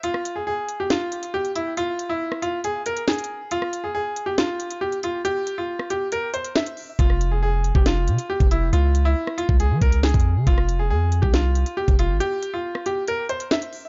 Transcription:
<<
  \new Staff \with { instrumentName = "Grand piano" } { \time 4/4 \key f \minor \tempo 4 = 138 f'8. aes'16 aes'8. g'16 f'4 g'8 e'8 | f'8. e'8. f'8 aes'8 bes'8 aes'4 | f'8. aes'16 aes'8. g'16 f'4 g'8 f'8 | g'8. f'8. g'8 bes'8 c''8 e''4 |
f'8. aes'16 aes'8. g'16 f'4 g'8 e'8 | f'8. e'8. f'8 aes'8 bes'8 aes'4 | f'8. aes'16 aes'8. g'16 f'4 g'8 f'8 | g'8. f'8. g'8 bes'8 c''8 e''4 | }
  \new Staff \with { instrumentName = "808-style bass" } { \clef bass \time 4/4 \key f \minor r1 | r1 | r1 | r1 |
f,,4.~ f,,16 f,,8. c16 r8 f,,8. | des,4 r8. des,8 f16 des,8. f,8 des16 | f,,4 f,8. c,4 r8 f,,8 aes,,16 | r1 | }
  \new DrumStaff \with { instrumentName = "Drums" } \drummode { \time 4/4 hh16 ss16 hh8 r8 hh8 <hh sn>8 hh16 hh16 r16 hh16 hh8 | hh8 hh8 r16 ss16 hh8 hh8 hh16 hh16 <hh sn>32 hh32 hh32 hh8 r32 | hh16 ss16 hh8 r8 hh8 <hh sn>8 hh16 hh16 r16 hh16 hh8 | hh8 hh8 r16 ss16 hh8 hh8 hh16 hh16 <hh sn>16 hh16 hho8 |
<hh bd>16 ss16 hh8 r8 hh16 bd16 <hh sn>8 hh16 hh16 r16 <hh bd>16 hh8 | hh8 hh8 r16 ss16 hh16 bd16 hh8 <hh bd>16 hh16 <hh sn>32 hh32 <hh bd>32 hh8 r32 | <hh bd>16 ss16 hh8 r8 hh16 bd16 <hh sn>8 hh16 hh16 r16 <hh bd>16 hh8 | hh8 hh8 r16 ss16 hh8 hh8 hh16 hh16 <hh sn>16 hh16 hho8 | }
>>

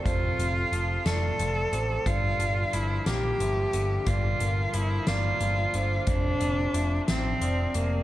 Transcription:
<<
  \new Staff \with { instrumentName = "Vibraphone" } { \time 6/8 \key g \dorian \tempo 4. = 60 c''8 a'4 d''4 c''8 | r4 f'''4 e''4 | d''8 bes'4 d''4 c''8 | c''4 e''4 d''4 | }
  \new Staff \with { instrumentName = "Cello" } { \time 6/8 \key g \dorian f'4. a'4. | f'4 e'8 g'4. | f'4 e'8 f'4. | d'4. c'4 bes8 | }
  \new Staff \with { instrumentName = "Clean electric guitar" } { \clef bass \time 6/8 \key g \dorian <f, c f a>8 c8 f8 a8 f8 c8 | g,8 d8 f8 bes8 f8 d8 | g,8 d8 f8 bes8 f8 d8 | f,8 c8 f4 f8 c8 | }
  \new Staff \with { instrumentName = "Picked electric bass" } { \clef bass \time 6/8 \key g \dorian f,,8 f,,8 f,,8 f,,8 f,,8 a,,8 | g,,8 g,,8 g,,8 bes,,8 g,,8 g,,8 | g,,8 g,,8 g,,8 g,,8 g,,8 g,,8 | f,,8 f,,8 f,,8 a,,8 f,,8 f,,8 | }
  \new DrumStaff \with { instrumentName = "Drums" } \drummode { \time 6/8 <hh bd>8 hh8 hh8 <hh sn>8 hh8 hh8 | <hh bd>8 hh8 hh8 <hh sn>8 hh8 hh8 | <hh bd>8 hh8 hh8 <hh sn>8 hh8 hh8 | <hh bd>8 hh8 hh8 <hh sn>8 hh8 hh8 | }
>>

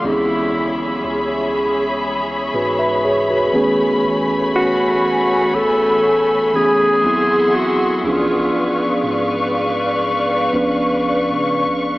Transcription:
<<
  \new Staff \with { instrumentName = "String section" } { \time 4/4 \key cis \phrygian \tempo 4 = 60 << { <cis'' b''>1~ | <cis'' b''>2. <e'' bis''>4 | <d'' cis'''>1 | } \\ { <gis' e''>2.~ <gis' e''>8 <a gis''>8~ | <a gis''>2. <gis' fis''>4 | <b' eis''>1 | } >> }
  \new Staff \with { instrumentName = "Alto saxophone" } { \time 4/4 \key cis \phrygian e'4 r2. | r8 fis'4 a'4 gis'4 fis'8 | eis'4 r2. | }
  \new Staff \with { instrumentName = "Tine electric piano" } { \time 4/4 \key cis \phrygian r2 r8 <fis' b'>16 <b' e''>16 <gis' cis''>16 <fis' b'>8 r16 | r1 | r1 | }
  \new Staff \with { instrumentName = "Tine electric piano" } { \time 4/4 \key cis \phrygian <dis e gis b cis' gis'>4. r2 <e a b cis' gis'>8~ | <e a b cis' gis'>4 r4. <e a b cis' gis'>8 <fis b bis e' gis'>4 | <eis b cis' d' gis'>4. r4 <eis b cis' d' b'>4 r8 | }
  \new Staff \with { instrumentName = "808-style bass" } { \clef bass \time 4/4 \key cis \phrygian cis,8. b,,16 cis,4. gis,4 r8 | a,,4 r8 a,,4. gis,,8 r8 | cis,8 r8 gis,4. cis,8. cis16. cis,16. | }
>>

